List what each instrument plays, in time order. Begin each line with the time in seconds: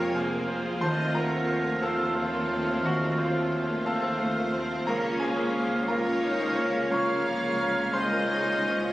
Already playing: double bass section F1, cello section F2, trombone section C3 G#3, grand piano C3 G#3 F4 G4 A#4 C5 F5 G5 A#5, viola section A#3 F4, french horn section C4 F4, violin section C4 C#5, clarinet A#4, trumpet section F5, flute G5
0.00 grand piano G#4
0.15 clarinet G#4, grand piano G#4 C5 F5 G#5, violin section C5, flute F5
0.32 grand piano A#4
0.48 grand piano C5
0.64 grand piano F4
0.80 double bass section D#2, cello section D#2, grand piano D#2 C5 A5 C6, trombone section F3 A3, viola section A3, french horn section C4 F4, clarinet C5, violin section D#5, trumpet section F5, flute A5
0.98 grand piano F4
1.14 clarinet A#4, grand piano A#4 C5 A#5, violin section C#5, flute F#5
1.31 grand piano A4
1.47 grand piano C5
1.65 grand piano A3
1.81 viola section C4, grand piano F4 A4 F5 A5, violin section F4 C5, clarinet A4, flute F5
1.99 grand piano A4
2.15 clarinet F4, grand piano F4 C5 F5, violin section A4, flute C#5
2.34 grand piano A#4
2.50 grand piano C5
2.67 grand piano F4
2.83 grand piano D#2 F#5, clarinet F#4, violin section A#4, flute D#5
2.87 grand piano F#4
3.01 grand piano A3
3.17 clarinet F4, grand piano F4 C5 F5, violin section A4, flute C#5
3.34 grand piano A4
3.52 grand piano C5
3.69 grand piano A3
3.85 viola section C4, grand piano F4 A4 F5 A5, clarinet A4, violin section C5, flute F5
4.02 grand piano A4
4.20 viola section A3, grand piano C5
4.36 grand piano A#4
4.53 viola section C4, grand piano C5
4.70 grand piano F4
4.86 cello section C#2, double bass section C#2, grand piano C#2 A#4 F5 A#5, trombone section C#3 A#3, viola section A#3 C#4, french horn section C#4 F4, violin section F4 C#5, clarinet A#4, flute F5, trumpet section F5
5.04 grand piano F4
5.19 clarinet G#4, grand piano G#4 C#5 G#5, violin section C5, flute F5
5.37 grand piano A#4
5.54 grand piano C#5
5.71 grand piano A#3
5.87 viola section A#3 F4, violin section C#4 C#5, grand piano F4 A#4 F5 A#5, clarinet A#4, flute F5
6.04 grand piano A#4
6.20 viola section D#4, grand piano C#5
6.38 grand piano C5
6.56 viola section C#4, grand piano C#5
6.74 grand piano F4
6.90 grand piano C#2 C#5 A#5 C#6, viola section F3 A#3, violin section F4 F5, clarinet C#5, flute A#5
7.08 grand piano A#3
7.24 viola section A#3, grand piano C#5
7.42 grand piano A#4
7.59 viola section C#4, grand piano C#5
7.75 grand piano A#3
7.93 viola section G#3 F4, grand piano F4 C5 F5 C6, violin section F4 D#5, clarinet C5, flute G#5
8.12 grand piano A#4
8.28 viola section D#4, grand piano C#5
8.46 grand piano C5
8.64 viola section C#4, grand piano C#5
8.81 grand piano F4